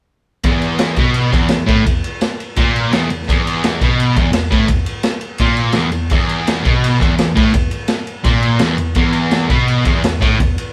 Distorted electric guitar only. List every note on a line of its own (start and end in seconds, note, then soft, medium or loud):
0.45 0.97 E2 loud
0.98 1.32 B2 medium
1.32 1.48 E2 loud
1.49 1.64 E2 medium
1.66 1.84 A2 loud
1.85 2.00 E2 medium
2.57 2.91 A#2 loud
2.91 3.09 E2 loud
3.11 3.24 E2 medium
3.28 3.80 E2 loud
3.82 4.16 B2 medium
4.17 4.31 E2 medium
4.32 4.47 E2 medium
4.50 4.68 A2 loud
4.68 4.82 E2 medium
5.40 5.75 A#2 loud
5.75 5.91 E2 medium
5.92 6.07 E2 medium
6.11 6.64 E2 loud
6.63 6.99 B2 loud
6.99 7.16 E2 loud
7.17 7.31 E2 medium
7.35 7.53 A2 loud
7.53 7.68 E2 medium
8.24 8.60 A#2 loud
8.61 8.78 E2 loud
8.79 8.93 E2 medium
8.96 9.49 E2 loud
9.49 9.84 B2 medium
9.85 10.02 E2 loud
10.04 10.18 E2 medium
10.21 10.38 A2 medium
10.40 10.54 E2 medium